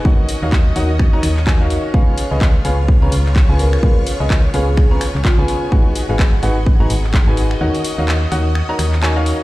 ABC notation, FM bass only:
X:1
M:4/4
L:1/16
Q:"Swing 16ths" 1/4=127
K:Dbmix
V:1 name="FM bass" clef=bass
E,, z2 E,,3 E,,3 z E,,4- E,, z | D,, z2 D,,3 D,,3 D,, D,,3 D,,3 | D,, z2 D,,3 D,,3 z2 D,, z D,, z2 | A,,, z2 A,,,3 A,,,3 A,,, A,,,3 A,,,3 |
E,, z2 E,,3 E,,3 z E,,4- E,, z |]